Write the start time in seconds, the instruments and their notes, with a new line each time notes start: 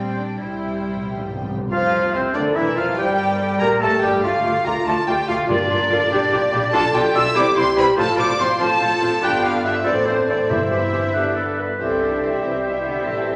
Already playing: double bass section A#1, viola section G3, cello section C4, violin section D5 G5
0.19 cello section D4
0.38 double bass section C2, timpani C3, viola section G3, cello section E4, violin section C5 G5
0.49 timpani C3
0.56 timpani C3
0.64 timpani C3
0.71 timpani C3
0.79 timpani C3
0.87 timpani C3
0.95 timpani C3
1.03 timpani C3
1.10 timpani C3
1.17 timpani C3
1.26 timpani C3
1.33 timpani C3
1.41 timpani C3
1.50 timpani C3
1.57 timpani C3
1.71 double bass section F1, cello section F2, viola section F3, bassoon F3, clarinet F4, violin section F4 F5, oboe F5, flute F5
2.13 double bass section C2, cello section C2, viola section C3, bassoon C3, violin section C4 C5, clarinet C4, oboe C5, flute C5
2.33 double bass section D2, cello section D2, bassoon D3, viola section D3, clarinet D4, violin section D4 D5, french horn section A#4, oboe D5, flute D5
2.55 double bass section E1, cello section E2, viola section E3, bassoon E3, clarinet E4, violin section E4 E5, flute E5, oboe E5
2.75 double bass section F1, cello section F2, viola section F3, bassoon F3, clarinet F4, violin section F4 F5, oboe F5, flute F5
2.96 double bass section G1, cello section G2, viola section G3, bassoon G3, clarinet G4, violin section G4 G5, french horn section C5, flute G5, oboe G5
3.19 french horn section A#4
3.41 french horn section A4
3.59 double bass section A#1, cello section A#2, viola section A#3, bassoon A#3, french horn section G4, clarinet A#4, violin section A#4 A#5, oboe A#5, flute A#5
3.81 double bass section A1, cello section A2, viola section A3, bassoon A3, clarinet A4, violin section A4 A5, oboe A5, flute A5
4.02 double bass section G1, cello section G2, viola section G3, bassoon G3, clarinet G4, violin section G4 G5, oboe G5, flute G5
4.23 cello section D2, double bass section D2, viola section A3 F4, bassoon A3, clarinet F4, french horn section F4, violin section F4 F5, oboe D5, flute F5
4.44 double bass section D2, cello section D2, viola section A3 F4, bassoon A3, clarinet F4, oboe D5
4.65 cello section D2, double bass section D2, viola section A3 F4, bassoon A3, clarinet F4, violin section A#4 A#5, oboe D5, flute A#5
4.86 cello section D2, double bass section D2, viola section A3 F4, bassoon A3, clarinet F4, violin section A4 A5, oboe D5, flute A5
5.07 cello section D2, double bass section D2, viola section A3 F4, bassoon A3, clarinet F4, violin section G4 G5, oboe D5, flute G5
5.27 cello section D2, double bass section D2, viola section A3 F4, bassoon A3, violin section F4 F5, clarinet F4, oboe D5, flute F5
5.48 double bass section G1, cello section G2, timpani G2, viola section A#3 F4, bassoon A#3, violin section D4 D5, clarinet F4, french horn section G4, flute D5, oboe D5
5.70 double bass section G1, cello section G2, viola section A#3 F4, bassoon A#3, clarinet F4, french horn section A#4, oboe D5
5.90 double bass section G1, cello section G2, viola section A#3 F4, bassoon A#3, clarinet F4, french horn section A4, oboe D5
6.11 double bass section A#1, cello section A#2, bassoon G3, viola section D4 G4, french horn section G4, clarinet G4, oboe D5
6.31 double bass section A#1, cello section A#2, bassoon G3, viola section D4 G4, french horn section F4, clarinet G4, oboe D5
6.52 double bass section A#1, cello section A#2, bassoon G3, viola section D4 G4, clarinet G4, french horn section G4, oboe D5
6.72 double bass section B1, cello section B2, bassoon G3, viola section D4 F4, clarinet F4, violin section A4 A5, french horn section A4, oboe D5, flute A5
6.93 double bass section B1, cello section B2, bassoon G3, viola section D4 F4, clarinet F4, violin section G4 G5, oboe D5, flute G5
7.13 double bass section B1, cello section B2, bassoon G3, viola section D4 F4, clarinet F4, oboe D5, violin section E5 E6, flute E6
7.34 double bass section C2, cello section C3, bassoon G3, viola section C4 E4, clarinet E4, french horn section G4, oboe C5, violin section D5 D6, flute D6
7.54 double bass section C2, cello section C3, bassoon G3, viola section C4 E4, clarinet E4, violin section C5 C6, oboe C5, flute C6
7.76 double bass section C2, cello section C3, bassoon G3, viola section C4 E4, clarinet E4, violin section B4 B5, oboe C5, flute B5
7.96 double bass section A1, cello section A2, bassoon F3, viola section C4 F4, french horn section F4, clarinet F4, violin section A4 A5, oboe C5, flute A5
8.17 double bass section A1, cello section A2, bassoon F3, viola section C4 F4, clarinet F4, oboe C5, violin section D5 D6, flute D6
8.38 double bass section A1, cello section A2, bassoon F3, viola section C4 F4, clarinet F4, violin section C5 C6, oboe C5, flute C6
8.58 double bass section A1, cello section A2, bassoon F3, viola section C4 F4, clarinet F4, french horn section F4, violin section A4 A5, oboe C5, flute A5
8.79 double bass section A1, cello section A2, bassoon F3, viola section C4 F4, clarinet F4, oboe C5
9.00 double bass section A1, cello section A2, bassoon F3, viola section C4 F4, clarinet F4, oboe C5
9.22 double bass section G1, cello section G2, bassoon D3, viola section B3 D4, clarinet G4, violin section G4 G5, oboe B4, flute G5
9.43 bassoon D3, violin section F4 F5, clarinet G4, oboe B4, flute F5
9.63 bassoon D3, violin section E4 E5, clarinet G4, oboe B4, flute E5
9.84 double bass section A1, cello section A2, bassoon E3, viola section C4, violin section D4 D5, clarinet A4, french horn section A4, oboe C5, flute D5
10.05 bassoon E3, violin section C4 C5, clarinet A4, flute C5, oboe C5
10.28 bassoon E3, violin section D4 D5, clarinet A4, oboe C5, flute D5
10.49 double bass section G1, cello section G2, timpani G2, bassoon E3, viola section C4, violin section E4 E5, french horn section E4, clarinet G4, oboe C5, flute E5
10.70 bassoon E3, clarinet G4, oboe C5
10.93 bassoon E3, clarinet G4, oboe C5
11.13 bassoon D3, viola section B3 D4, clarinet G4, oboe B4
11.36 bassoon D3, clarinet A4, oboe B4
11.58 bassoon D3, oboe B4, clarinet B4
11.78 double bass section C2, french horn section E3, bassoon G3, cello section C4, violin section G4 C5 E5, clarinet G4, viola section A4, oboe C5, flute E5
11.90 violin section E4 E5 G5
12.01 french horn section F3, cello section D4, violin section G4 C5 E5
12.11 violin section E4 E5 G5
12.21 french horn section E3, cello section C4, violin section G4 C5 E5
12.31 violin section E4 E5 G5
12.42 double bass section C2, french horn section E3, cello section C4, violin section G4 C5 E5, viola section G4
12.51 violin section E4 E5 G5
12.61 french horn section B2, cello section G3, violin section G4 C5 E5
12.73 violin section E4 E5 G5
12.84 french horn section D3, cello section B3, violin section G4 C5 E5
12.94 violin section E4 E5 G5
13.04 double bass section A1, french horn section E3, cello section C4, violin section G4 C5 A5, clarinet A4
13.16 violin section E4 A4 G5
13.27 violin section G4 C5 A5